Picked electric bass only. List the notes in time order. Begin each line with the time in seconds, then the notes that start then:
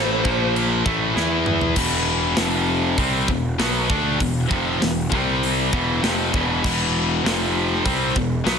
Already playing: A1
0.25 A#1
0.86 A1
1.16 E2
1.76 E1
2.38 F1
2.98 C2
3.29 E1
3.59 B1
3.90 D2
4.21 E1
4.50 F1
4.82 E1
5.12 C2
5.73 E1
6.03 F1
6.34 E1
6.65 E1
7.24 F1
7.86 C2
8.16 E1
8.46 B1